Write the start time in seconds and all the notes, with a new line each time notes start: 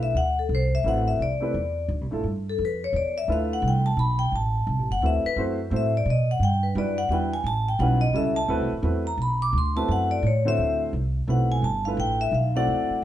Already playing: B1 A3 D4 E4 F4 B4
0.03 E5
0.14 D2 F#5
0.39 A4
0.49 C2
0.55 C5
0.75 E5
0.84 A1 A3 C4 E4 F#4 B4 F#5
1.08 E5
1.19 C2 D5
1.40 A3 C4 E4 G4 B4
1.54 E2
1.88 D2
2.01 C2
2.11 A1 A3 D4 E4 F4 A4
2.23 G2
2.50 A4
2.58 F2
2.65 B4
2.84 C#5
2.93 E2 D5
3.18 E5
3.28 D2 A3 D4 E4 F4 B4
3.32 F5
3.53 F#5
3.62 C2
3.68 G5
3.86 A5
3.97 B1 B5
4.19 G5
4.32 A1 A5
4.67 C2
4.79 A1
4.90 F#1 F#5
5.02 D2 A3 C4 E4 F#4 B4
5.06 E5
5.24 B4, muted upright bass stroke
5.36 F#2 A3 C4 E4 F#4 C5
5.70 A2 A3 C4 E4 F#4 C5
5.76 E5
5.97 D5
6.05 B2
6.10 D#5
6.31 F#5
6.39 G2 G5
6.63 B4
6.75 F#2 G3 D4 E4 F#4 B4 D5
6.98 F#5
7.09 E2 G3 D4 E4 F#4 G5
7.13 B4
7.34 G#5
7.44 A1 A5
7.69 G5
7.79 B1 G3 C#4 E4 F#4 B4 F#5
8.01 D#5
8.13 C#2 G3 C#4 E4 F#4 A4 E5
8.36 A5
8.48 D2 A3 C4 E4 F#4 B4
8.60 C2
8.72 A1
8.82 E2 A3 C4 E4 F#4 B4
9.07 A#5
9.17 B1
9.22 B5
9.42 D6
9.53 D2
9.58 C6
9.76 A3 C4 E4 F#4 B4 A5
9.88 F#2 F#5
10.11 D5
10.22 A2
10.27 C#5
10.45 D3 A3 C4 E4 F#4 C5 E5
10.58 D2
10.93 C2
11.27 B1 A3 C4 E4 F#4 B4 F#5
11.52 G#5
11.62 G1 A5
11.85 A3 D4 E4 F4 B4 F5
11.97 A1 G5
12.21 E5
12.32 B1 F5
12.55 A3 C4 E4 F#4 D5 F#5
12.67 D2
12.90 muted upright bass stroke